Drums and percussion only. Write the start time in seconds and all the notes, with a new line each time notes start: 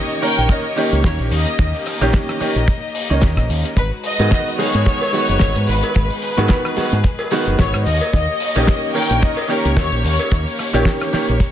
0.11 shaker
0.23 open hi-hat, shaker
0.38 closed hi-hat, shaker
0.49 kick, closed hi-hat, shaker
0.77 open hi-hat, shaker
0.92 closed hi-hat, shaker
1.04 kick, snare, closed hi-hat, shaker
1.19 closed hi-hat
1.31 open hi-hat, shaker
1.47 closed hi-hat, shaker
1.59 kick, closed hi-hat, shaker
1.74 open hi-hat
1.86 cross-stick, open hi-hat, shaker
2.01 closed hi-hat, shaker
2.13 kick, snare, closed hi-hat, shaker
2.29 cross-stick, shaker
2.41 open hi-hat, shaker
2.56 closed hi-hat, shaker
2.68 kick, closed hi-hat, shaker
2.95 open hi-hat, shaker
3.10 closed hi-hat, shaker
3.22 kick, snare, closed hi-hat, shaker
3.37 kick, cross-stick, closed hi-hat
3.50 open hi-hat, shaker
3.65 closed hi-hat, shaker
3.77 kick, closed hi-hat, shaker
4.04 open hi-hat, shaker
4.20 closed hi-hat, cowbell, shaker
4.31 kick, snare, closed hi-hat, shaker
4.48 shaker
4.60 open hi-hat, shaker
4.74 closed hi-hat, shaker
4.86 kick, closed hi-hat, shaker
5.02 cowbell
5.14 open hi-hat, shaker
5.29 closed hi-hat, shaker
5.39 kick, snare, closed hi-hat, cowbell, shaker
5.56 closed hi-hat
5.67 open hi-hat, shaker
5.83 closed hi-hat, cowbell, shaker
5.94 kick, closed hi-hat, shaker
6.10 open hi-hat
6.22 open hi-hat, shaker
6.38 closed hi-hat, cowbell, shaker
6.48 kick, snare, closed hi-hat, shaker
6.65 cross-stick, shaker
6.76 open hi-hat, cowbell, shaker
6.92 closed hi-hat, shaker
7.04 kick, closed hi-hat, shaker
7.19 cowbell
7.31 open hi-hat, shaker
7.46 closed hi-hat, shaker
7.59 kick, snare, closed hi-hat, cowbell, shaker
7.74 cross-stick, closed hi-hat
7.86 open hi-hat, shaker
8.01 closed hi-hat, cowbell, shaker
8.13 kick, closed hi-hat, shaker
8.40 open hi-hat, shaker
8.56 closed hi-hat, cowbell, shaker
8.67 kick, snare, closed hi-hat, shaker
8.84 shaker
8.95 open hi-hat, cowbell, shaker
9.10 closed hi-hat, shaker
9.22 kick, closed hi-hat, shaker
9.37 cowbell
9.49 open hi-hat, shaker
9.65 closed hi-hat, shaker
9.77 kick, snare, closed hi-hat, cowbell, shaker
9.92 closed hi-hat
10.04 open hi-hat, shaker
10.19 closed hi-hat, cowbell, shaker
10.31 kick, closed hi-hat, shaker
10.47 open hi-hat
10.59 cross-stick, open hi-hat, shaker
10.74 closed hi-hat, cowbell, shaker
10.85 kick, snare, closed hi-hat, shaker
11.00 cross-stick, closed hi-hat, shaker
11.13 snare, open hi-hat, shaker
11.29 closed hi-hat, shaker
11.40 kick, closed hi-hat, shaker